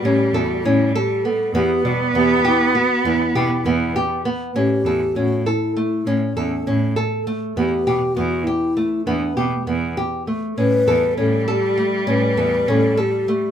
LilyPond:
<<
  \new Staff \with { instrumentName = "Alto flute" } { \time 5/8 \key a \mixolydian \tempo 4 = 100 g'8 fis'8 e'8 g'8 a'8 | g'8 fis'8 g'8 e'8 fis'8 | e'4. r4 | g'4 fis'8 e'4 |
cis'4. r4 | g'4 fis'8 e'4 | d'4 r4. | b'4 a'8 g'4 |
b'4 a'8 g'4 | }
  \new Staff \with { instrumentName = "Nylon-string guitar" } { \time 5/8 \key a \mixolydian cis'8 a'8 cis'8 a'8 b8 | b8 g8 b8 g'8 b8 | b8 g'8 b8 g'8 b8 | cis'8 a'8 cis'8 a'8 a8 |
cis'8 a'8 cis'8 a'8 a8 | b8 g'8 b8 g'8 a8 | b8 g'8 b8 g'8 a8 | cis'8 a'8 cis'8 a'8 a8 |
cis'8 a'8 cis'8 a'8 a8 | }
  \new Staff \with { instrumentName = "Cello" } { \clef bass \time 5/8 \key a \mixolydian g2~ g8 | b2~ b8~ | b2 r8 | r2 r8 |
r2 r8 | r2 r8 | r2 r8 | g2~ g8~ |
g2~ g8 | }
  \new Staff \with { instrumentName = "Cello" } { \clef bass \time 5/8 \key a \mixolydian a,16 r16 e,16 r16 a,8 r4 | e,16 r16 b,16 r16 e,8 r4 | e,16 r16 b,16 r16 e,8 r4 | a,16 r16 e,16 r16 a,8 r4 |
a,16 r16 e,16 r16 a,8 r4 | e,16 r16 b,16 r16 e,8 r4 | e,16 r16 b,16 r16 e,8 r4 | a,16 r16 e,16 r16 a,8 r4 |
a,16 r16 e,16 r16 a,8 r4 | }
>>